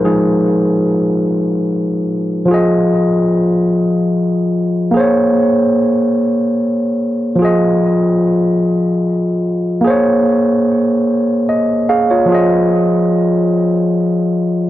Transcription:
\new Staff \with { instrumentName = "Tine electric piano" } { \time 6/8 \key f \phrygian \tempo 4. = 49 << { aes'2~ aes'8 r8 | r2. | r2. | r2. |
r2 ees''8 <aes' f''>16 <f' des''>16~ | <f' des''>16 r2 r8. | } \\ { <f aes ees'>2. | <f f' aes' ees''>2. | <bes aes' c'' des''>2. | <f f' aes' ees''>2. |
<bes aes' c'' des''>2. | <f f' aes' ees''>2. | } >> }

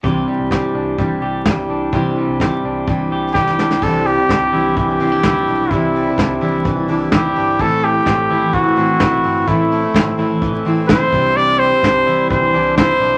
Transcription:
<<
  \new Staff \with { instrumentName = "Trumpet" } { \time 4/4 \key c \major \tempo 4 = 127 r1 | r2. g'4 | a'8 g'4. g'2 | e'2 r4 g'4 |
a'8 g'4. fis'2 | e'2 r4 c''4 | d''8 c''4. c''4 c''4 | }
  \new Staff \with { instrumentName = "Clean electric guitar" } { \time 4/4 \key c \major <c g'>8 g8 g'8 d'8 g8 g'8 g8 d'8 | <c g'>8 g8 g'8 d'8 g8 g'8 g8 d'8 | c8 g8 d'8 e'8 e8 c'16 d'16 e'8 d'8 | c8 g8 d'8 e'8 e8 d'8 e'8 d'8 |
a,8 a8 c'8 e'8 e8 c'8 e'8 c'8 | a,8 a8 c'8 e'8 e8 c'8 e'8 c8 | c8 g8 d'8 e'8 e8 d'8 e'8 d'8 | }
  \new Staff \with { instrumentName = "Steel-string acoustic guitar" } { \time 4/4 \key c \major <c e g d' e'>2 <e g d' e'>4 <e g d' e'>4 | <c e g d' e'>4 <e g d' e'>4 <e g d' e'>4 <e g d' e'>4 | <c e g d' e'>8. <g d' e'>8. <e g d' e'>8. <g d' e'>16 <e g d' e'>8 <e g d' e'>4 | <c e g d' e'>8. <g d' e'>8. <e g d' e'>8. <g d' e'>16 <e g d' e'>8 <e g d' e'>4 |
<a, e a c' e'>8. <a c' e'>8. <e a c' e'>8. <a c' e'>16 <e a c' e'>8 <e a c' e'>4 | <a, e a c' e'>8. <c' e'>8. <e a c' e'>8. <a c' e'>16 <e a c' e'>8 <e a c' e'>8 <c e g d' e'>8~ | <c e g d' e'>8. e'8. <e g d' e'>8. <g d' e'>16 <e g d' e'>8 <e g d' e'>4 | }
  \new Staff \with { instrumentName = "Picked electric bass" } { \clef bass \time 4/4 \key c \major c,8 r16 c,8 r16 c,8 c,8 c,8 c,8 c,8 | c,8 r16 c,8 r16 c,8 c,8 c,8 c,8 c,8 | c,4 c,8 c,8 c,8 c,8 d,8 b,,8 | c,4 c,8 c,8 c,8 c,8 d,8 g,,8 |
a,,4 a,,8 a,,8 a,,8 a,,8 b,,8 g,,8 | a,,4 a,,8 a,,8 a,,8 a,,8 b,,8 c,8~ | c,4 c,8 c,8 c,8 c,8 c,8 b,,8 | }
  \new DrumStaff \with { instrumentName = "Drums" } \drummode { \time 4/4 <hh bd>4 <hh bd sn>4 <hh bd>4 <hh bd sn>4 | <hh bd>4 <hh bd sn>4 <hh bd>4 <bd sn>16 sn16 sn16 sn16 | <cymc bd>8 hho8 <hh bd sn>8 hho8 <hh bd>8 hho8 <bd sn>8 hho8 | <hh bd>8 hho8 <hh bd sn>8 hho8 <hh bd>8 hho8 <hh bd sn>8 hho8 |
<hh bd>8 hho8 <hh bd sn>8 hho8 <hh bd>8 hho8 <hh bd sn>8 hho8 | <hh bd>8 hho8 <hh bd sn>8 hho8 <hh bd>8 hho8 <hh bd sn>8 <hho bd>8 | hh8 hho8 <hh bd sn>8 hho8 <hh bd>8 hho8 <bd sn>8 hho8 | }
>>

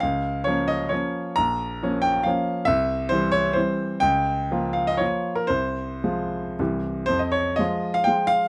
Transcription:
<<
  \new Staff \with { instrumentName = "Grand piano" } { \time 3/4 \key bes \dorian \tempo 4 = 130 f''4 des''8 ees''8 des''4 | \key f \minor bes''4. g''8 f''4 | e''4 c''8 des''8 c''4 | g''4. f''16 ees''16 des''8. bes'16 |
c''2~ c''8 r8 | c''16 ees''16 des''8 ees''8. f''16 g''8 f''8 | }
  \new Staff \with { instrumentName = "Grand piano" } { \clef bass \time 3/4 \key bes \dorian des,4 <f bes des'>4 <f bes des'>4 | \key f \minor bes,,4 <f bes des'>4 <f bes des'>4 | c,4 <e g c'>4 <e g c'>4 | des,4 <f bes f'>4 <f bes f'>4 |
c,4 <f aes f'>4 <c, e g g'>4 | f,4 <f aes f'>4 <f aes f'>4 | }
>>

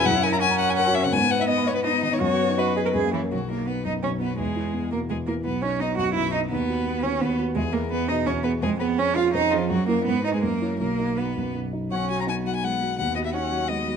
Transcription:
<<
  \new Staff \with { instrumentName = "Violin" } { \time 3/4 \key b \major \tempo 4 = 169 fis''8 gis''16 ais''16 gis''8 fis''16 gis''16 fis''8 e''16 fis''16 | gis''8 fis''16 e''16 dis''8 cis''16 b'16 dis''8 dis''16 cis''16 | cis''4 b'4 r8 e'8 | fis'8 ais'8 b'8 dis''8 cis''8 b'8 |
gis'4. ais'8 gis'8 ais'8 | b'8 cis''8 dis''8 fis''8 e''8 dis''8 | b'4. cis''8 b'8 r8 | gis'8 ais'8 b'8 dis''8 cis''8 b'8 |
gis'8 b'8 cis''8 eis''8 dis''8 eis'8 | fis'8 ais'8 b'8 dis''16 gis'16 ais'4 | ais'4 b'4 r4 | fis''8 gis''16 ais''16 gis''8 fis''16 gis''16 fis''4 |
fis''8 dis''16 e''16 fis''4 dis''4 | }
  \new Staff \with { instrumentName = "Grand piano" } { \time 3/4 \key b \major fis,16 cis'16 ais'16 cis''16 fis''16 ais''16 fis''16 cis''16 ais'16 fis'16 cis'16 cis16 | gis,16 b16 b'16 dis'16 dis''16 b''16 dis''16 b'16 dis'16 b16 dis16 b16 | fis,16 b16 b'16 dis'16 dis''16 b''16 dis''16 b'16 fis,16 ais16 cis''16 ais'16 | b,,8 dis'8 b8 fis,8 b,,8 dis'8 |
e,8 e'8 b8 b,8 e,8 e'8 | b,,8 dis'8 b8 fis,8 b,,8 dis'8 | dis,8 fis'8 b8 dis8 dis,8 fis'8 | e,8 gis'8 b8 b,8 e,8 gis'8 |
eis,8 gis'8 cis'8 eis8 eis,8 gis'8 | fis,8 <e' ais'>8 gis,8 <dis' b'>8 fis,8 <e' cis''>8 | b,,8 dis'8 fis8 fis,8 b,,8 dis'8 | b,,8 fis'8 dis'8 fis8 gis8 fis8 |
dis,8 fis'8 dis'8 fis8 gis8 fis8 | }
  \new Staff \with { instrumentName = "Cello" } { \time 3/4 \key b \major e'4 cis'2 | b2 dis'4 | fis'4 fis'8 gis'16 ais'16 gis'8 e8 | fis8 ais8 b8 dis'8 cis'8 b8 |
gis4. ais8 gis8 ais8 | b8 cis'8 dis'8 fis'8 e'8 dis'8 | b4. cis'8 b8 r8 | gis8 ais8 b8 dis'8 cis'8 b8 |
gis8 b8 cis'8 eis'8 dis'8 eis8 | fis8 ais8 b8 dis'16 gis16 ais4 | ais4 b4 r4 | cis'4 b2 |
b4 cis'4 b4 | }
>>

